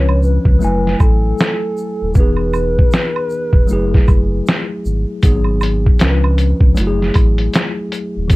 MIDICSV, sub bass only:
0, 0, Header, 1, 2, 480
1, 0, Start_track
1, 0, Tempo, 769231
1, 1343, Time_signature, 4, 2, 24, 8
1, 5216, End_track
2, 0, Start_track
2, 0, Title_t, "Sub bass"
2, 0, Program_c, 0, 38
2, 0, Note_on_c, 0, 37, 100
2, 240, Note_off_c, 0, 37, 0
2, 287, Note_on_c, 0, 37, 94
2, 368, Note_off_c, 0, 37, 0
2, 393, Note_on_c, 0, 30, 102
2, 594, Note_off_c, 0, 30, 0
2, 631, Note_on_c, 0, 33, 97
2, 833, Note_off_c, 0, 33, 0
2, 1261, Note_on_c, 0, 27, 94
2, 1336, Note_off_c, 0, 27, 0
2, 1348, Note_on_c, 0, 28, 108
2, 1757, Note_off_c, 0, 28, 0
2, 2206, Note_on_c, 0, 28, 85
2, 2287, Note_off_c, 0, 28, 0
2, 2312, Note_on_c, 0, 30, 102
2, 2514, Note_off_c, 0, 30, 0
2, 2550, Note_on_c, 0, 30, 96
2, 2753, Note_off_c, 0, 30, 0
2, 3029, Note_on_c, 0, 32, 94
2, 3154, Note_off_c, 0, 32, 0
2, 3267, Note_on_c, 0, 32, 101
2, 3677, Note_off_c, 0, 32, 0
2, 3748, Note_on_c, 0, 37, 101
2, 4079, Note_off_c, 0, 37, 0
2, 4125, Note_on_c, 0, 37, 92
2, 4207, Note_off_c, 0, 37, 0
2, 4232, Note_on_c, 0, 30, 107
2, 4434, Note_off_c, 0, 30, 0
2, 4469, Note_on_c, 0, 33, 96
2, 4672, Note_off_c, 0, 33, 0
2, 5097, Note_on_c, 0, 27, 95
2, 5174, Note_off_c, 0, 27, 0
2, 5186, Note_on_c, 0, 28, 105
2, 5216, Note_off_c, 0, 28, 0
2, 5216, End_track
0, 0, End_of_file